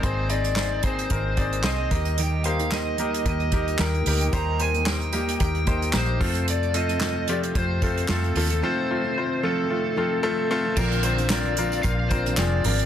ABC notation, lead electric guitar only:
X:1
M:4/4
L:1/8
Q:"Swing 16ths" 1/4=112
K:Eb
V:1 name="Lead electric guitar"
c d2 c3 e2 | g f e2 e2 g2 | b a g2 g2 c2 | d e2 d c2 =A2 |
c3 =A4 z | B c d2 f c d2 |]